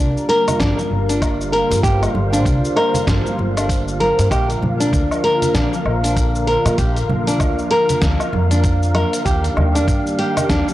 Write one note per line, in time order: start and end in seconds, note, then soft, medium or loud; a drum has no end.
0.00 9.22 D3 medium
0.00 4.28 G3 medium
0.00 4.27 A#3 medium
0.00 0.27 D4 medium
0.00 4.27 F4 medium
0.00 1.81 A#4 medium
0.00 10.74 F5 medium
0.17 cabasa soft
0.29 0.59 A#4 loud
0.29 closed hi-hat medium
0.29 muted conga soft
0.48 closed hi-hat soft
0.48 low conga medium
0.48 cabasa medium
0.48 low woodblock medium
0.59 0.71 G1 medium
0.59 0.77 D4 medium
0.59 kick loud
0.59 snare medium
0.59 closed hi-hat medium
0.59 cabasa medium
0.79 high conga soft
0.79 cabasa soft
0.91 1.61 G1 medium
1.09 1.51 D4 medium
1.09 closed hi-hat soft
1.09 cabasa medium
1.22 kick loud
1.22 closed hi-hat medium
1.22 cabasa medium
1.22 low woodblock medium
1.41 cabasa soft
1.52 1.82 A#4 medium
1.52 closed hi-hat medium
1.71 1.79 G2 medium
1.71 closed hi-hat soft
1.71 muted conga medium
1.71 cabasa medium
1.83 2.06 G1 loud
1.83 2.01 G4 medium
1.83 4.28 C5 medium
1.83 kick loud
1.83 closed hi-hat medium
1.83 cabasa medium
2.03 closed hi-hat soft
2.03 cabasa soft
2.03 low woodblock medium
2.14 2.45 G1 medium
2.14 high conga medium
2.33 2.75 D4 medium
2.33 closed hi-hat soft
2.33 muted conga soft
2.33 cabasa medium
2.45 2.57 C2 loud
2.45 kick loud
2.45 closed hi-hat soft
2.45 cabasa medium
2.65 cabasa soft
2.76 3.06 A#4 loud
2.76 closed hi-hat medium
2.76 muted conga soft
2.76 low woodblock medium
2.94 closed hi-hat soft
2.94 low conga medium
2.94 cabasa medium
3.07 3.19 G1 medium
3.07 3.25 D4 medium
3.07 kick loud
3.07 snare medium
3.07 closed hi-hat medium
3.07 cabasa medium
3.27 cabasa soft
3.38 4.08 G1 medium
3.38 high conga medium
3.57 3.99 D4 medium
3.57 closed hi-hat soft
3.57 cabasa medium
3.57 low woodblock medium
3.69 kick loud
3.69 closed hi-hat medium
3.69 cabasa medium
3.88 cabasa soft
4.00 4.30 A#4 medium
4.00 closed hi-hat medium
4.00 high conga medium
4.19 4.27 G2 loud
4.19 closed hi-hat soft
4.19 cabasa medium
4.31 4.53 A#1 medium
4.31 9.22 F3 medium
4.31 9.22 A#3 medium
4.31 9.22 F4 medium
4.31 4.48 G4 medium
4.31 9.22 A#4 medium
4.31 kick loud
4.31 closed hi-hat medium
4.31 cabasa medium
4.31 low woodblock medium
4.50 closed hi-hat soft
4.50 cabasa soft
4.62 4.93 A#1 medium
4.62 high conga medium
4.62 low conga medium
4.80 5.22 D4 medium
4.80 closed hi-hat soft
4.80 muted conga soft
4.80 cabasa medium
4.93 5.05 D2 loud
4.93 kick loud
4.93 closed hi-hat soft
4.93 cabasa medium
5.11 cabasa soft
5.11 low woodblock medium
5.24 5.53 A#4 medium
5.24 closed hi-hat medium
5.24 muted conga soft
5.42 closed hi-hat soft
5.42 low conga medium
5.42 cabasa medium
5.55 5.67 A#1 medium
5.55 5.72 D4 medium
5.55 kick loud
5.55 snare medium
5.55 closed hi-hat medium
5.55 cabasa medium
5.73 high conga soft
5.73 cabasa soft
5.85 6.55 A#1 medium
5.85 low woodblock medium
6.04 6.46 D4 medium
6.04 closed hi-hat soft
6.04 cabasa medium
6.17 kick loud
6.17 closed hi-hat medium
6.17 cabasa medium
6.35 cabasa soft
6.47 6.77 A#4 medium
6.47 closed hi-hat soft
6.65 6.74 A#2 medium
6.65 closed hi-hat soft
6.65 muted conga medium
6.65 cabasa medium
6.65 low woodblock medium
6.78 7.00 A#1 loud
6.78 6.96 G4 medium
6.78 kick loud
6.78 closed hi-hat medium
6.78 cabasa medium
6.96 closed hi-hat soft
6.96 cabasa soft
7.09 7.40 A#1 medium
7.09 high conga medium
7.09 low conga medium
7.27 7.70 D4 medium
7.27 closed hi-hat soft
7.27 muted conga medium
7.27 cabasa medium
7.40 7.52 D2 medium
7.40 kick loud
7.40 closed hi-hat soft
7.40 cabasa medium
7.40 low woodblock medium
7.59 cabasa soft
7.71 8.01 A#4 medium
7.71 closed hi-hat medium
7.71 muted conga soft
7.89 closed hi-hat soft
7.89 low conga medium
7.89 cabasa medium
8.02 8.14 D2 medium
8.02 8.20 D4 medium
8.02 kick loud
8.02 snare medium
8.02 closed hi-hat soft
8.02 cabasa medium
8.20 cabasa soft
8.20 low woodblock medium
8.33 9.03 F2 loud
8.33 high conga medium
8.51 8.94 D4 medium
8.51 closed hi-hat soft
8.51 cabasa medium
8.64 kick loud
8.64 closed hi-hat soft
8.64 cabasa medium
8.83 cabasa soft
8.95 9.24 A#4 medium
8.95 closed hi-hat soft
8.95 high conga medium
8.95 low woodblock medium
9.13 closed hi-hat soft
9.13 cabasa medium
9.25 9.48 D#2 medium
9.25 10.74 D#3 medium
9.25 10.74 G3 medium
9.25 10.74 A#3 medium
9.25 10.74 D4 medium
9.25 9.43 G4 medium
9.25 10.74 G4 medium
9.25 kick loud
9.25 closed hi-hat medium
9.25 cabasa medium
9.44 closed hi-hat soft
9.44 cabasa soft
9.57 9.88 D#2 medium
9.57 high conga medium
9.57 low conga medium
9.57 low woodblock medium
9.75 10.17 D4 medium
9.75 closed hi-hat soft
9.75 muted conga soft
9.75 cabasa medium
9.88 10.00 G2 loud
9.88 kick loud
9.88 closed hi-hat soft
9.88 cabasa medium
10.07 cabasa soft
10.19 10.48 G4 loud
10.19 closed hi-hat soft
10.19 muted conga soft
10.37 closed hi-hat soft
10.37 low conga medium
10.37 cabasa medium
10.37 low woodblock medium
10.49 10.61 D#2 medium
10.49 10.67 D4 medium
10.49 kick loud
10.49 snare medium
10.49 closed hi-hat medium
10.49 cabasa soft
10.68 high conga soft
10.68 cabasa soft